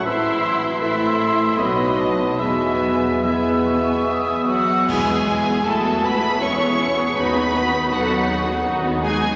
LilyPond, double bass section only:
\new Staff \with { instrumentName = "Double bass section" } { \clef bass \time 3/4 \key e \major \tempo 4 = 79 a,,2 b,,4 | e,2~ e,8. r16 | e,4 e,4 e,4 | dis,4 dis,4 dis,4 | }